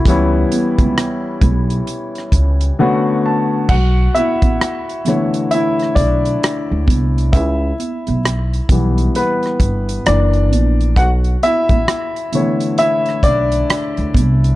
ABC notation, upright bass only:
X:1
M:4/4
L:1/16
Q:"Swing 16ths" 1/4=66
K:Bm
V:1 name="Upright bass" clef=bass
C,,2 z C,, z2 B,,,2 z2 C,,2 z4 | B,,,2 z A,,, z6 B,,,2 z D,, =C,,2 | C,,2 z B,,,3 B,,,2 z2 G,,,2 F,,,2 ^A,,,2 | B,,,2 z A,,, z6 B,,,2 z D,, =C,,2 |]